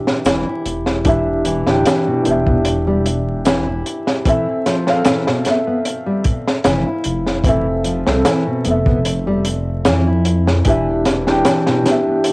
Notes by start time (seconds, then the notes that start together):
Already playing: E3 D4 G4 E5 G5
0.07 snare
0.25 E1 E3, snare, closed hi-hat, shaker
0.47 E4
0.66 E1, closed hi-hat
0.86 snare
1.05 E3 D4 G4 E5, kick, closed hi-hat
1.45 E3, closed hi-hat
1.66 D1 E3 D4 G4 G5, snare
1.85 E3, snare, closed hi-hat, shaker
2.07 B2
2.22 E1 E3 B3 D4, closed hi-hat
2.27 G4 E5
2.47 B3, kick
2.65 closed hi-hat
2.87 G3
3.06 closed hi-hat
3.45 E3, snare, closed hi-hat, shaker
3.67 E4
3.86 closed hi-hat
4.07 snare
4.25 E3 C4 A4 E5, kick, closed hi-hat
4.66 F3, snare, closed hi-hat
4.87 C4 A4 F5, snare
5.05 E3, snare, closed hi-hat, shaker
5.27 B2, snare
5.45 B3 A4, snare, closed hi-hat
5.50 E5
5.67 B3
5.85 closed hi-hat
6.06 G3
6.24 kick, closed hi-hat
6.48 snare
6.64 F1 E3, snare, closed hi-hat, shaker
6.87 E4
7.04 F1, closed hi-hat
7.27 snare
7.44 E3 C4 A4, kick, closed hi-hat
7.48 E5
7.84 F3, closed hi-hat
8.07 C2 C4 A4, snare
8.25 E3, snare, closed hi-hat, shaker
8.47 B2
8.65 F1 B3 A4, closed hi-hat
8.71 E5
8.86 B3, kick
9.05 closed hi-hat
9.27 G3
9.45 closed hi-hat
9.85 F2 E3, snare, closed hi-hat, shaker
10.07 E4
10.25 closed hi-hat
10.47 snare
10.65 E1 E3 D4 G4, kick, closed hi-hat
10.69 E5
11.05 E3, snare, closed hi-hat
11.27 E3 D4 G4 G5, snare
11.45 E3, snare, closed hi-hat, shaker
11.67 B2, snare
11.83 E3 B3 D4, snare, closed hi-hat
11.88 G4 E5
12.07 B3
12.24 closed hi-hat